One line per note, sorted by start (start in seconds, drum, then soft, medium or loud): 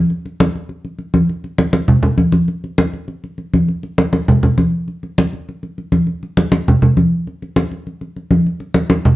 0.10 high conga soft
0.25 high conga soft
0.40 high conga loud
0.55 high conga soft
0.69 high conga soft
0.84 high conga soft
0.98 high conga soft
1.14 high conga medium
1.29 high conga soft
1.44 high conga soft
1.58 high conga loud
1.73 high conga medium
1.88 high conga soft
1.88 low conga medium
2.03 high conga soft
2.03 low conga medium
2.18 high conga medium
2.32 high conga medium
2.48 high conga soft
2.64 high conga soft
2.78 high conga loud
2.94 high conga soft
3.08 high conga soft
3.24 high conga soft
3.38 high conga soft
3.54 high conga medium
3.68 high conga soft
3.83 high conga soft
3.98 high conga loud
4.13 high conga loud
4.28 high conga soft
4.28 low conga medium
4.43 high conga soft
4.43 low conga medium
4.58 high conga medium
4.88 high conga soft
5.03 high conga soft
5.18 high conga medium
5.33 high conga soft
5.49 high conga soft
5.63 high conga soft
5.78 high conga soft
5.92 high conga medium
6.07 high conga soft
6.23 high conga soft
6.37 high conga medium
6.52 high conga medium
6.68 high conga soft
6.68 low conga medium
6.82 high conga soft
6.82 low conga medium
6.97 high conga medium
7.27 high conga soft
7.43 high conga soft
7.56 high conga loud
7.72 high conga soft
7.87 high conga soft
8.01 high conga soft
8.16 high conga soft
8.31 high conga medium
8.47 high conga soft
8.60 high conga soft
8.75 high conga loud
8.90 high conga loud
9.05 high conga soft
9.05 low conga medium